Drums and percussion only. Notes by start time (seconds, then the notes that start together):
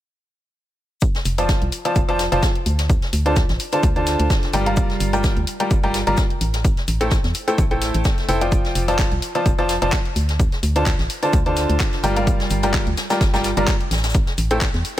1.01 kick, closed hi-hat, shaker
1.15 snare, closed hi-hat
1.25 open hi-hat, shaker
1.38 closed hi-hat
1.49 kick, snare, closed hi-hat, shaker
1.62 closed hi-hat
1.72 open hi-hat, shaker
1.85 closed hi-hat
1.96 kick, closed hi-hat, shaker
2.09 closed hi-hat
2.19 snare, open hi-hat, shaker
2.32 closed hi-hat
2.42 kick, snare, closed hi-hat, shaker
2.55 closed hi-hat
2.66 open hi-hat, shaker
2.78 snare, closed hi-hat
2.90 kick, closed hi-hat, shaker
3.02 snare, closed hi-hat
3.13 open hi-hat, shaker
3.26 closed hi-hat
3.36 kick, snare, closed hi-hat, shaker
3.49 snare, closed hi-hat
3.59 open hi-hat, shaker
3.72 closed hi-hat
3.83 kick, closed hi-hat, shaker
3.96 closed hi-hat
4.07 snare, open hi-hat, shaker
4.19 closed hi-hat
4.30 kick, snare, closed hi-hat, shaker
4.43 snare, closed hi-hat
4.53 open hi-hat, shaker
4.66 closed hi-hat
4.77 kick, closed hi-hat, shaker
4.90 snare, closed hi-hat
5.00 open hi-hat, shaker
5.13 closed hi-hat
5.23 kick, snare, closed hi-hat, shaker
5.37 closed hi-hat
5.47 open hi-hat, shaker
5.60 closed hi-hat
5.71 kick, closed hi-hat, shaker
5.83 closed hi-hat
5.94 snare, open hi-hat, shaker
6.07 closed hi-hat
6.17 kick, snare, closed hi-hat, shaker
6.30 closed hi-hat
6.41 open hi-hat, shaker
6.53 snare, closed hi-hat
6.65 kick, closed hi-hat, shaker
6.77 snare, closed hi-hat
6.87 open hi-hat, shaker
7.01 closed hi-hat
7.10 kick, snare, closed hi-hat, shaker
7.24 snare, closed hi-hat
7.34 open hi-hat, shaker
7.47 closed hi-hat
7.58 kick, closed hi-hat, shaker
7.71 closed hi-hat
7.82 snare, open hi-hat, shaker
7.94 closed hi-hat
8.04 kick, snare, closed hi-hat, shaker
8.18 snare, closed hi-hat
8.29 open hi-hat, shaker
8.41 closed hi-hat
8.52 kick, closed hi-hat, shaker
8.65 snare, closed hi-hat
8.75 open hi-hat, shaker
8.88 closed hi-hat
8.99 kick, snare, clap, closed hi-hat, shaker
9.12 closed hi-hat
9.22 open hi-hat, shaker
9.35 closed hi-hat
9.46 kick, closed hi-hat, shaker
9.59 closed hi-hat
9.69 snare, open hi-hat, shaker
9.82 closed hi-hat
9.92 kick, snare, clap, closed hi-hat, shaker
10.05 closed hi-hat
10.16 open hi-hat, shaker
10.29 snare, closed hi-hat
10.39 kick, closed hi-hat, shaker
10.52 snare, closed hi-hat
10.63 open hi-hat, shaker
10.76 closed hi-hat
10.86 kick, snare, clap, closed hi-hat, shaker
10.99 snare, closed hi-hat
11.10 open hi-hat, shaker
11.22 closed hi-hat
11.33 kick, closed hi-hat, shaker
11.46 closed hi-hat
11.57 snare, open hi-hat, shaker
11.70 closed hi-hat
11.80 kick, snare, clap, closed hi-hat, shaker
11.93 snare, closed hi-hat
12.03 open hi-hat, shaker
12.16 closed hi-hat
12.27 kick, closed hi-hat, shaker
12.40 snare, closed hi-hat
12.50 open hi-hat, shaker
12.62 closed hi-hat
12.73 kick, snare, clap, closed hi-hat, shaker
12.87 closed hi-hat
12.97 snare, open hi-hat, shaker
13.10 snare, closed hi-hat, shaker
13.21 kick, snare, closed hi-hat, shaker
13.34 snare, closed hi-hat, shaker
13.44 snare, open hi-hat, shaker
13.57 closed hi-hat
13.67 kick, snare, clap, closed hi-hat, shaker
13.81 closed hi-hat
13.91 snare, open hi-hat, shaker
13.97 snare, shaker
14.03 snare, closed hi-hat, shaker
14.09 snare, shaker
14.14 kick, closed hi-hat, shaker
14.27 snare, closed hi-hat
14.38 open hi-hat, shaker
14.51 closed hi-hat
14.61 kick, snare, clap, closed hi-hat, shaker
14.74 snare, closed hi-hat
14.85 open hi-hat, shaker